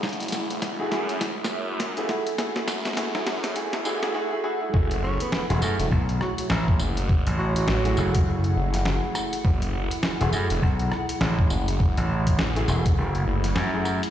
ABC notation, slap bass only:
X:1
M:4/4
L:1/16
Q:"Swing 16ths" 1/4=102
K:F#m
V:1 name="Slap bass" clef=bass
z16 | z16 | z4 z E,,, F,, z B,,,2 z2 A,,,2 z2 | z A,,,3 z2 F,,,4 z6 |
z4 z E,,, F,, z B,,,2 z2 A,,,2 z2 | z A,,,3 z2 E,,,2 F,,,2 z2 F,,3 z |]